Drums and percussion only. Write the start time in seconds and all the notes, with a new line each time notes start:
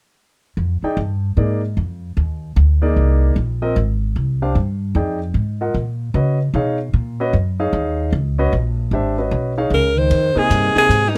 10.11 ride
10.51 hi-hat pedal, ride
10.76 snare
10.91 hi-hat pedal, ride